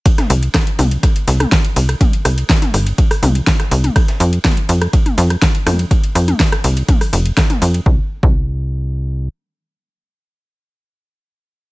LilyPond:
<<
  \new Staff \with { instrumentName = "Analog synth bass" } { \clef bass \time 4/4 \key f \mixolydian \tempo 4 = 123 r8 c,8 r8 c,8 r8 c,8 r8 c,8 | r8 c,8 r8 g,,8 r8 c,8 r8 c,8 | r8 f,8 r8 f,8 r8 f,8 r8 f,8 | r8 f,8 r8 c,8 r8 f,,8 r8 f,8 |
c,16 r8 c,2~ c,16 r4 | r1 | }
  \new DrumStaff \with { instrumentName = "Drums" } \drummode { \time 4/4 <hh bd cymr>16 <hh ss sn toml>16 <hho cymr>16 hh16 <hh bd cymr ss sn>16 <hh cymr>16 <hho cymr toml>16 hh16 <hh bd cymr ss>16 hh16 <hho cymr sn>16 <hh ss toml>16 <hh bd cymr sn>16 <hh cymr>16 <hho cymr>16 <hh cymr ss>16 | <hh bd cymr toml>16 hh16 <hho cymr ss>16 <hh cymr>16 <hh bd cymr sn>16 <hh sn toml>16 <hho cymr ss>16 <hh cymr>16 <hh bd cymr>16 <hho ss>16 <hho cymr toml>16 hh16 <hh bd cymr sn>16 <hh ss sn>16 <hho cymr>16 <hh cymr toml>16 | <hh bd cymr ss>16 <hh sn>16 <hho cymr>16 hh16 <hh bd cymr ss sn toml>16 <hh cymr>16 <hho cymr>16 <hh ss>16 <hh bd cymr>16 <hh toml>16 <hho cymr sn>16 <hh ss>16 <hh bd cymr sn>16 <hh cymr>16 <hho cymr ss toml>16 <hh cymr>16 | <hh bd cymr>16 hh16 <hho cymr ss>16 <hh cymr toml>16 <hh bd cymr sn>16 <hh ss sn>16 <hho cymr>16 <hh cymr>16 <hh bd cymr toml>16 <hho ss>16 <hho cymr>16 hh16 <hh bd cymr ss sn>16 <hh sn toml>16 <hho cymr>16 <hh cymr>16 |
bd8. bd16 r4 r4 r4 | r4 r4 r4 r4 | }
>>